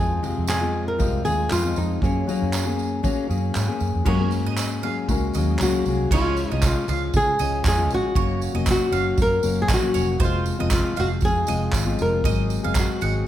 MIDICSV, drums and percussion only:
0, 0, Header, 1, 2, 480
1, 0, Start_track
1, 0, Tempo, 511073
1, 1895, Time_signature, 4, 2, 24, 8
1, 12467, End_track
2, 0, Start_track
2, 0, Title_t, "Drums"
2, 223, Note_on_c, 9, 54, 47
2, 317, Note_off_c, 9, 54, 0
2, 446, Note_on_c, 9, 54, 90
2, 462, Note_on_c, 9, 39, 113
2, 540, Note_off_c, 9, 54, 0
2, 556, Note_off_c, 9, 39, 0
2, 936, Note_on_c, 9, 54, 48
2, 940, Note_on_c, 9, 36, 104
2, 1030, Note_off_c, 9, 54, 0
2, 1034, Note_off_c, 9, 36, 0
2, 1176, Note_on_c, 9, 54, 51
2, 1270, Note_off_c, 9, 54, 0
2, 1410, Note_on_c, 9, 39, 114
2, 1428, Note_on_c, 9, 54, 79
2, 1504, Note_off_c, 9, 39, 0
2, 1522, Note_off_c, 9, 54, 0
2, 1654, Note_on_c, 9, 54, 49
2, 1748, Note_off_c, 9, 54, 0
2, 1896, Note_on_c, 9, 36, 115
2, 1914, Note_on_c, 9, 54, 33
2, 1990, Note_off_c, 9, 36, 0
2, 2008, Note_off_c, 9, 54, 0
2, 2148, Note_on_c, 9, 54, 47
2, 2242, Note_off_c, 9, 54, 0
2, 2377, Note_on_c, 9, 39, 115
2, 2378, Note_on_c, 9, 54, 90
2, 2471, Note_off_c, 9, 39, 0
2, 2472, Note_off_c, 9, 54, 0
2, 2621, Note_on_c, 9, 54, 30
2, 2715, Note_off_c, 9, 54, 0
2, 2855, Note_on_c, 9, 36, 101
2, 2860, Note_on_c, 9, 54, 49
2, 2949, Note_off_c, 9, 36, 0
2, 2954, Note_off_c, 9, 54, 0
2, 3104, Note_on_c, 9, 54, 51
2, 3198, Note_off_c, 9, 54, 0
2, 3332, Note_on_c, 9, 39, 100
2, 3344, Note_on_c, 9, 54, 77
2, 3426, Note_off_c, 9, 39, 0
2, 3438, Note_off_c, 9, 54, 0
2, 3571, Note_on_c, 9, 54, 47
2, 3665, Note_off_c, 9, 54, 0
2, 3807, Note_on_c, 9, 49, 90
2, 3811, Note_on_c, 9, 36, 106
2, 3901, Note_off_c, 9, 49, 0
2, 3905, Note_off_c, 9, 36, 0
2, 4046, Note_on_c, 9, 54, 67
2, 4058, Note_off_c, 9, 54, 0
2, 4058, Note_on_c, 9, 54, 51
2, 4152, Note_off_c, 9, 54, 0
2, 4293, Note_on_c, 9, 54, 93
2, 4295, Note_on_c, 9, 39, 103
2, 4387, Note_off_c, 9, 54, 0
2, 4389, Note_off_c, 9, 39, 0
2, 4535, Note_on_c, 9, 54, 62
2, 4629, Note_off_c, 9, 54, 0
2, 4777, Note_on_c, 9, 36, 105
2, 4779, Note_on_c, 9, 54, 51
2, 4871, Note_off_c, 9, 36, 0
2, 4873, Note_off_c, 9, 54, 0
2, 5010, Note_on_c, 9, 54, 72
2, 5018, Note_off_c, 9, 54, 0
2, 5018, Note_on_c, 9, 54, 53
2, 5112, Note_off_c, 9, 54, 0
2, 5246, Note_on_c, 9, 39, 119
2, 5266, Note_on_c, 9, 54, 76
2, 5340, Note_off_c, 9, 39, 0
2, 5360, Note_off_c, 9, 54, 0
2, 5499, Note_on_c, 9, 54, 44
2, 5500, Note_off_c, 9, 54, 0
2, 5500, Note_on_c, 9, 54, 52
2, 5594, Note_off_c, 9, 54, 0
2, 5738, Note_on_c, 9, 36, 112
2, 5738, Note_on_c, 9, 49, 103
2, 5752, Note_on_c, 9, 54, 36
2, 5832, Note_off_c, 9, 36, 0
2, 5832, Note_off_c, 9, 49, 0
2, 5846, Note_off_c, 9, 54, 0
2, 5979, Note_on_c, 9, 54, 71
2, 5984, Note_off_c, 9, 54, 0
2, 5984, Note_on_c, 9, 54, 54
2, 6078, Note_off_c, 9, 54, 0
2, 6217, Note_on_c, 9, 54, 92
2, 6221, Note_on_c, 9, 39, 109
2, 6223, Note_on_c, 9, 36, 108
2, 6311, Note_off_c, 9, 54, 0
2, 6315, Note_off_c, 9, 39, 0
2, 6317, Note_off_c, 9, 36, 0
2, 6461, Note_on_c, 9, 54, 70
2, 6462, Note_off_c, 9, 54, 0
2, 6462, Note_on_c, 9, 54, 31
2, 6556, Note_off_c, 9, 54, 0
2, 6701, Note_on_c, 9, 54, 56
2, 6705, Note_on_c, 9, 36, 105
2, 6795, Note_off_c, 9, 54, 0
2, 6799, Note_off_c, 9, 36, 0
2, 6939, Note_on_c, 9, 54, 59
2, 6947, Note_off_c, 9, 54, 0
2, 6947, Note_on_c, 9, 54, 78
2, 7041, Note_off_c, 9, 54, 0
2, 7180, Note_on_c, 9, 36, 112
2, 7183, Note_on_c, 9, 39, 117
2, 7193, Note_on_c, 9, 54, 93
2, 7274, Note_off_c, 9, 36, 0
2, 7277, Note_off_c, 9, 39, 0
2, 7287, Note_off_c, 9, 54, 0
2, 7424, Note_on_c, 9, 54, 48
2, 7518, Note_off_c, 9, 54, 0
2, 7659, Note_on_c, 9, 36, 118
2, 7753, Note_off_c, 9, 36, 0
2, 7902, Note_on_c, 9, 54, 66
2, 7908, Note_off_c, 9, 54, 0
2, 7908, Note_on_c, 9, 54, 51
2, 8001, Note_off_c, 9, 54, 0
2, 8133, Note_on_c, 9, 54, 96
2, 8141, Note_on_c, 9, 39, 110
2, 8142, Note_on_c, 9, 36, 98
2, 8227, Note_off_c, 9, 54, 0
2, 8235, Note_off_c, 9, 39, 0
2, 8236, Note_off_c, 9, 36, 0
2, 8383, Note_on_c, 9, 54, 32
2, 8386, Note_off_c, 9, 54, 0
2, 8386, Note_on_c, 9, 54, 70
2, 8480, Note_off_c, 9, 54, 0
2, 8617, Note_on_c, 9, 54, 56
2, 8620, Note_on_c, 9, 36, 119
2, 8711, Note_off_c, 9, 54, 0
2, 8714, Note_off_c, 9, 36, 0
2, 8855, Note_on_c, 9, 54, 61
2, 8862, Note_off_c, 9, 54, 0
2, 8862, Note_on_c, 9, 54, 76
2, 8956, Note_off_c, 9, 54, 0
2, 9098, Note_on_c, 9, 36, 104
2, 9102, Note_on_c, 9, 39, 120
2, 9104, Note_on_c, 9, 54, 91
2, 9191, Note_off_c, 9, 36, 0
2, 9196, Note_off_c, 9, 39, 0
2, 9198, Note_off_c, 9, 54, 0
2, 9342, Note_on_c, 9, 54, 50
2, 9347, Note_off_c, 9, 54, 0
2, 9347, Note_on_c, 9, 54, 61
2, 9441, Note_off_c, 9, 54, 0
2, 9578, Note_on_c, 9, 36, 111
2, 9588, Note_on_c, 9, 54, 37
2, 9672, Note_off_c, 9, 36, 0
2, 9682, Note_off_c, 9, 54, 0
2, 9820, Note_on_c, 9, 54, 67
2, 9914, Note_off_c, 9, 54, 0
2, 10051, Note_on_c, 9, 54, 106
2, 10056, Note_on_c, 9, 39, 118
2, 10059, Note_on_c, 9, 36, 118
2, 10145, Note_off_c, 9, 54, 0
2, 10150, Note_off_c, 9, 39, 0
2, 10153, Note_off_c, 9, 36, 0
2, 10297, Note_on_c, 9, 54, 34
2, 10298, Note_off_c, 9, 54, 0
2, 10298, Note_on_c, 9, 54, 69
2, 10392, Note_off_c, 9, 54, 0
2, 10525, Note_on_c, 9, 54, 54
2, 10540, Note_on_c, 9, 36, 106
2, 10619, Note_off_c, 9, 54, 0
2, 10634, Note_off_c, 9, 36, 0
2, 10770, Note_on_c, 9, 54, 59
2, 10775, Note_off_c, 9, 54, 0
2, 10775, Note_on_c, 9, 54, 79
2, 10869, Note_off_c, 9, 54, 0
2, 11009, Note_on_c, 9, 39, 124
2, 11015, Note_on_c, 9, 36, 97
2, 11028, Note_on_c, 9, 54, 85
2, 11103, Note_off_c, 9, 39, 0
2, 11109, Note_off_c, 9, 36, 0
2, 11122, Note_off_c, 9, 54, 0
2, 11258, Note_on_c, 9, 54, 59
2, 11259, Note_off_c, 9, 54, 0
2, 11259, Note_on_c, 9, 54, 48
2, 11353, Note_off_c, 9, 54, 0
2, 11497, Note_on_c, 9, 36, 114
2, 11511, Note_on_c, 9, 54, 39
2, 11591, Note_off_c, 9, 36, 0
2, 11605, Note_off_c, 9, 54, 0
2, 11740, Note_on_c, 9, 54, 49
2, 11742, Note_off_c, 9, 54, 0
2, 11742, Note_on_c, 9, 54, 74
2, 11836, Note_off_c, 9, 54, 0
2, 11975, Note_on_c, 9, 54, 94
2, 11976, Note_on_c, 9, 39, 112
2, 11980, Note_on_c, 9, 36, 112
2, 12069, Note_off_c, 9, 54, 0
2, 12070, Note_off_c, 9, 39, 0
2, 12074, Note_off_c, 9, 36, 0
2, 12220, Note_on_c, 9, 54, 77
2, 12314, Note_off_c, 9, 54, 0
2, 12467, End_track
0, 0, End_of_file